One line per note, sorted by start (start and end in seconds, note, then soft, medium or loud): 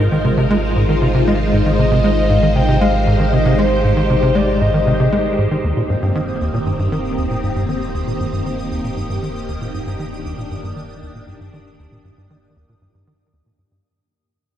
0.00 5.61 G#1 medium
0.00 5.60 G#3 medium
0.00 5.60 D#4 medium
0.00 2.53 F4 medium
0.00 5.64 A#4 medium
0.00 5.60 C5 medium
0.12 0.18 D#3 medium
0.25 0.31 C3 medium
0.37 0.47 C3 loud
0.50 0.56 G#3 loud
0.76 0.85 G#2 medium
0.89 0.95 D#3 medium
1.02 1.08 C3 medium
1.14 1.23 C3 loud
1.27 1.33 G#3 loud
1.53 1.62 G#2 medium
1.66 1.72 D#3 medium
1.78 1.85 C3 medium
1.78 2.52 D#5 loud
1.91 2.00 C3 loud
2.04 2.10 G#3 loud
2.30 2.39 G#2 medium
2.43 2.49 D#3 medium
2.55 2.62 C3 medium
2.55 5.61 G4 medium
2.55 2.79 G5 loud
2.68 2.77 C3 loud
2.81 2.87 G#3 loud
2.81 3.34 F5 loud
3.07 3.16 G#2 medium
3.20 3.26 D#3 medium
3.33 3.39 C3 medium
3.33 3.60 D#5 loud
3.46 3.54 C3 loud
3.58 3.64 G#3 loud
3.58 3.83 C5 loud
3.84 3.93 G#2 medium
3.84 4.37 C5 loud
3.97 4.03 D#3 medium
4.10 4.16 C3 medium
4.23 4.31 C3 loud
4.35 4.41 G#3 loud
4.35 4.63 D5 medium
4.61 4.70 G#2 medium
4.61 5.38 D#5 loud
4.74 4.80 D#3 medium
4.87 4.93 C3 medium
5.00 5.08 C3 loud
5.12 5.18 G#3 loud
5.38 5.47 G#2 medium
5.51 5.57 D#3 medium
5.63 13.82 D#1 medium
5.63 5.73 D#2 medium
5.63 13.80 D#3 medium
5.63 13.80 A#3 medium
5.63 9.70 C4 medium
5.63 13.80 G4 medium
5.63 13.85 D#6 medium
5.77 5.82 A#2 medium
5.90 5.95 G2 medium
6.02 6.11 G2 medium
6.15 6.21 D#3 loud
6.41 6.50 D#2 medium
6.54 6.59 A#2 medium
6.66 6.72 G2 medium
6.79 6.88 G2 medium
6.92 6.98 D#3 loud
7.18 7.26 D#2 medium
7.31 7.36 A#2 medium
7.43 7.49 G2 medium
7.56 7.65 G2 loud
7.69 7.75 D#3 loud
7.94 8.03 D#2 medium
8.07 8.13 A#2 medium
8.20 8.26 G2 medium
8.33 8.42 G2 medium
8.46 8.52 D#3 loud
8.71 8.80 D#2 medium
8.84 8.90 A#2 medium
8.97 9.03 G2 medium
9.10 9.18 G2 medium
9.23 9.28 D#3 medium
9.48 9.57 D#2 medium
9.61 9.67 A#2 medium
9.74 9.80 G2 medium
9.74 13.80 D4 medium
9.87 9.95 G2 loud
9.99 10.05 D#3 medium
10.25 10.34 D#2 medium
10.38 10.44 A#2 medium
10.51 10.57 G2 medium
10.64 10.72 G2 medium
10.76 10.82 D#3 medium
11.02 11.11 D#2 medium
11.15 11.21 A#2 medium
11.28 11.34 G2 medium
11.40 11.49 G2 medium
11.53 11.59 D#3 medium
11.79 11.88 D#2 medium
11.92 11.98 A#2 medium
12.05 12.11 G2 medium
12.18 12.26 G2 medium
12.30 12.36 D#3 medium
12.56 12.65 D#2 medium
12.69 12.75 A#2 medium
12.82 12.87 G2 medium
12.95 13.03 G2 medium
13.07 13.13 D#3 medium
13.33 13.42 D#2 medium
13.46 13.52 A#2 medium
13.59 13.64 G2 medium
13.71 13.80 G2 medium